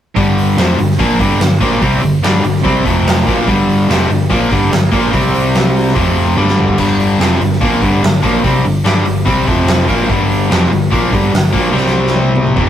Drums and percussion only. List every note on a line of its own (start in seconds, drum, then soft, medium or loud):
0.16 kick loud
0.16 open hi-hat medium
0.38 open hi-hat medium
0.57 snare loud
0.57 open hi-hat medium
0.78 open hi-hat medium
0.90 snare soft
0.99 kick loud
0.99 open hi-hat medium
1.20 kick loud
1.20 open hi-hat medium
1.40 snare loud
1.40 open hi-hat medium
1.61 kick medium
1.61 open hi-hat soft
1.82 kick loud
1.82 open hi-hat medium
2.03 open hi-hat medium
2.23 snare loud
2.23 open hi-hat medium
2.44 open hi-hat medium
2.56 snare soft
2.65 kick loud
2.65 open hi-hat medium
2.85 kick loud
2.85 open hi-hat medium
3.07 snare loud
3.07 open hi-hat medium
3.27 kick loud
3.27 open hi-hat medium
3.48 kick medium
3.48 open hi-hat medium
3.69 open hi-hat medium
3.90 snare loud
3.90 open hi-hat medium
4.10 open hi-hat medium
4.31 kick loud
4.31 open hi-hat medium
4.51 kick loud
4.51 open hi-hat medium
4.72 snare loud
4.72 open hi-hat loud
4.93 kick loud
4.93 open hi-hat medium
5.13 kick loud
5.13 open hi-hat medium
5.34 open hi-hat medium
5.54 snare loud
5.54 open hi-hat medium
5.76 snare soft
5.76 open hi-hat medium
5.87 snare soft
5.96 kick loud
5.96 open hi-hat medium
6.17 open hi-hat medium
6.37 high tom medium
6.48 snare medium
6.58 mid tom medium
6.68 kick medium
6.78 kick medium
6.78 open hi-hat medium
6.78 crash medium
6.99 open hi-hat medium
7.20 snare loud
7.20 open hi-hat medium
7.41 open hi-hat medium
7.52 snare soft
7.61 kick loud
7.61 open hi-hat medium
7.82 kick loud
7.82 open hi-hat medium
8.03 snare loud
8.03 open hi-hat medium
8.24 kick loud
8.24 open hi-hat medium
8.44 kick loud
8.44 open hi-hat medium
8.65 open hi-hat medium
8.85 snare loud
8.85 open hi-hat medium
9.06 open hi-hat medium
9.27 kick loud
9.27 open hi-hat medium
9.48 kick loud
9.48 open hi-hat medium
9.67 snare loud
9.67 open hi-hat medium
9.88 kick medium
9.88 open hi-hat medium
10.10 kick loud
10.10 open hi-hat medium
10.31 open hi-hat medium
10.51 snare loud
10.51 open hi-hat medium
10.72 open hi-hat medium
10.92 kick loud
10.92 open hi-hat medium
11.13 kick loud
11.13 open hi-hat medium
11.34 snare loud
11.34 open hi-hat medium
11.54 kick medium
11.54 open hi-hat medium
11.77 snare medium
11.86 snare medium
12.07 snare medium
12.16 high tom medium
12.36 high tom medium
12.47 mid tom medium
12.57 kick loud